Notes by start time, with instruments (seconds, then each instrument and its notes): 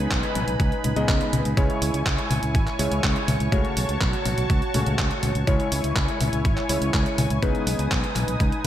Already playing: electric grand piano C#3 G#3 B3 D#4 B4, analog synth pad D#4 B4 G#5 B5
0.11 fingered electric bass B1, kick, clap, closed hi-hat
0.23 closed hi-hat
0.35 fingered electric bass B1, closed hi-hat, high tom
0.48 fingered electric bass B1, closed hi-hat
0.60 fingered electric bass C#2, kick, closed hi-hat
0.72 closed hi-hat
0.84 fingered electric bass C#2, closed hi-hat, high tom
0.96 fingered electric bass C#2, electric grand piano C#3 G#3 B3 D#4 D#5, closed hi-hat
1.08 fingered electric bass C#2, kick, clap, closed hi-hat
1.21 closed hi-hat
1.33 fingered electric bass C#2, closed hi-hat, high tom
1.45 fingered electric bass C#2, closed hi-hat
1.57 fingered electric bass C#2, electric grand piano C#3 G#3 C#4 E4 C#5, analog synth pad E4 C#5 G#5 C#6, kick, closed hi-hat
1.70 closed hi-hat
1.82 fingered electric bass C#2, open hi-hat
1.94 fingered electric bass C#2, closed hi-hat
2.06 kick, clap, closed hi-hat
2.18 closed hi-hat
2.31 fingered electric bass C#2, open hi-hat, high tom
2.43 fingered electric bass C#2, closed hi-hat
2.55 fingered electric bass G#1, kick, closed hi-hat
2.67 clap, closed hi-hat
2.79 fingered electric bass C#2, electric grand piano C#3 G#3 C#4 E4 C#5, open hi-hat
2.91 fingered electric bass C#2, closed hi-hat
3.04 fingered electric bass C#2, kick, clap, closed hi-hat
3.16 closed hi-hat
3.28 fingered electric bass C#2, open hi-hat, high tom
3.40 fingered electric bass C#2, closed hi-hat
3.52 fingered electric bass C#2, electric grand piano C#3 A3 C#4 F#4 C#5, analog synth pad F#4 A5, kick, closed hi-hat
3.65 closed hi-hat
3.77 fingered electric bass B1, open hi-hat
3.89 fingered electric bass C#2, closed hi-hat
4.01 fingered electric bass B1, kick, clap, closed hi-hat
4.13 closed hi-hat
4.26 fingered electric bass B1, open hi-hat, high tom
4.38 fingered electric bass B1, closed hi-hat
4.50 fingered electric bass C#2, kick, closed hi-hat
4.62 closed hi-hat
4.74 fingered electric bass C#2, electric grand piano C#3 A3 C#4 F#4 C#5, open hi-hat, high tom
4.87 fingered electric bass C#2, closed hi-hat
4.99 fingered electric bass C#2, kick, clap, closed hi-hat
5.11 closed hi-hat
5.23 fingered electric bass C#2, open hi-hat, high tom
5.35 fingered electric bass C#2, closed hi-hat
5.47 fingered electric bass C#2, electric grand piano C#3 G#3 C#4 E4 C#5, analog synth pad E4 C#5 G#5, kick, closed hi-hat
5.60 closed hi-hat
5.72 fingered electric bass C#2, open hi-hat
5.84 fingered electric bass C#2, closed hi-hat
5.96 fingered electric bass C#2, kick, clap, closed hi-hat
6.08 closed hi-hat
6.21 fingered electric bass C#2, open hi-hat, high tom
6.33 fingered electric bass C#2, closed hi-hat
6.45 fingered electric bass G#1, kick, closed hi-hat
6.57 clap, closed hi-hat
6.69 fingered electric bass C#2, electric grand piano C#3 G#3 C#4 E4 C#5, open hi-hat
6.81 fingered electric bass C#2, closed hi-hat
6.94 fingered electric bass C#2, kick, clap, closed hi-hat
7.06 closed hi-hat
7.18 fingered electric bass C#2, open hi-hat, high tom
7.30 fingered electric bass C#2, closed hi-hat
7.42 fingered electric bass C#2, electric grand piano C#3 G#3 B3 D#4 B4, analog synth pad D#4 B4 D#6, kick, closed hi-hat
7.55 closed hi-hat
7.67 fingered electric bass B1, open hi-hat
7.79 fingered electric bass C#2, closed hi-hat
7.91 fingered electric bass B1, kick, clap, closed hi-hat
8.04 closed hi-hat
8.16 fingered electric bass B1, clap, open hi-hat, high tom
8.28 fingered electric bass B1, closed hi-hat
8.40 fingered electric bass C#2, kick, closed hi-hat
8.52 closed hi-hat